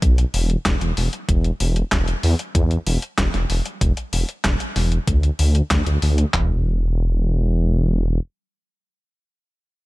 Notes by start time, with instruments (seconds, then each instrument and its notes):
0.02 detuned saw bass B1, kick, closed hi-hat
0.18 closed hi-hat
0.34 detuned saw bass E1, open hi-hat
0.50 closed hi-hat
0.65 detuned saw bass E1, kick, snare, clap, closed hi-hat
0.81 detuned saw bass E1, closed hi-hat
0.97 detuned saw bass E1, open hi-hat
1.13 closed hi-hat
1.29 detuned saw bass E1, kick, closed hi-hat
1.44 closed hi-hat
1.60 detuned saw bass E1, open hi-hat
1.76 closed hi-hat
1.92 detuned saw bass E1, kick, snare, clap, closed hi-hat
2.08 closed hi-hat
2.23 detuned saw bass E2, open hi-hat
2.39 closed hi-hat
2.55 detuned saw bass E2, kick, closed hi-hat
2.71 closed hi-hat
2.87 detuned saw bass E1, open hi-hat
3.02 closed hi-hat
3.18 detuned saw bass E1, kick, snare, clap, closed hi-hat
3.34 detuned saw bass E1, snare, closed hi-hat
3.50 detuned saw bass E1, open hi-hat
3.66 closed hi-hat
3.81 detuned saw bass E1, kick, closed hi-hat
3.97 closed hi-hat
4.13 detuned saw bass E1, open hi-hat
4.29 closed hi-hat
4.44 detuned saw bass E1, kick, snare, clap, closed hi-hat
4.60 closed hi-hat
4.76 detuned saw bass E1, snare, open hi-hat
4.92 closed hi-hat
5.07 detuned saw bass D2, kick, closed hi-hat
5.23 closed hi-hat
5.39 detuned saw bass D2, open hi-hat
5.55 closed hi-hat
5.71 detuned saw bass D2, kick, snare, clap, closed hi-hat
5.87 detuned saw bass D2, closed hi-hat
6.02 detuned saw bass D2, open hi-hat
6.18 closed hi-hat
6.34 detuned saw bass E1, kick, clap, floor tom